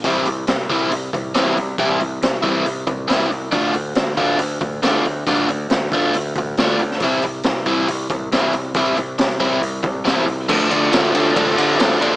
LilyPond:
<<
  \new Staff \with { instrumentName = "Overdriven electric guitar" } { \time 4/4 \key d \minor \tempo 4 = 138 <e g c' e'>8 r4 <e g c' e'>8 r4 <e g c' e'>8 r8 | <e g c' e'>8 r4 <e g c' e'>8 r4 <e g c' e'>8 r8 | <d a d' f'>8 r4 <d a d' f'>8 r4 <d a d' f'>8 r8 | <d a d' f'>8 r4 <d a d' f'>8 r4 <d a d' f'>8 r8 |
<e g c' e'>8 r4 <e g c' e'>8 r4 <e g c' e'>8 r8 | <e g c' e'>8 r4 <e g c' e'>8 r4 <e g c' e'>8 r8 | <d f a d'>8 <d f a d'>8 <d f a d'>8 <d f a d'>8 <d f a d'>8 <d f a d'>8 <d f a d'>8 <d f a d'>8 | }
  \new Staff \with { instrumentName = "Picked electric bass" } { \clef bass \time 4/4 \key d \minor c,8 c,8 c,8 c,8 c,8 c,8 c,8 c,8 | c,8 c,8 c,8 c,8 c,8 c,8 c,8 c,8 | d,8 d,8 d,8 d,8 d,8 d,8 d,8 d,8 | d,8 d,8 d,8 d,8 d,8 d,8 d,8 d,8 |
c,8 c,8 c,8 c,8 c,8 c,8 c,8 c,8 | c,8 c,8 c,8 c,8 c,8 c,8 c,8 c,8 | d,8 d,8 d,8 d,8 d,8 d8 d,8 bes,,8 | }
  \new DrumStaff \with { instrumentName = "Drums" } \drummode { \time 4/4 <hho bd>8 hho8 <hho sn>8 <hho bd>8 hho8 <hho bd>8 <hho sn>8 hho8 | <hho bd>8 hho8 <hho sn>8 <hho bd>8 hho8 <hho bd>8 <hho sn>8 hho8 | <hho bd>8 hho8 <hho sn>8 <hho bd>8 hho8 <hho bd>8 <hho sn>8 hho8 | <hho bd>8 hho8 <hho sn>8 <hho bd>8 hho8 <hho bd>8 <hho sn>8 hho16 sn16 |
<hho bd>8 hho8 <hho sn>8 <hho bd>8 hho8 <hho bd>8 <hho sn>8 hho8 | <hho bd>8 hho8 <hho sn>8 <hho bd>8 hho8 <hho bd>8 <hho sn>8 hho8 | <cymc bd>8 cymr8 <cymr sn>8 cymr8 <bd cymr>8 cymr8 <cymr sn>16 sn16 cymr8 | }
>>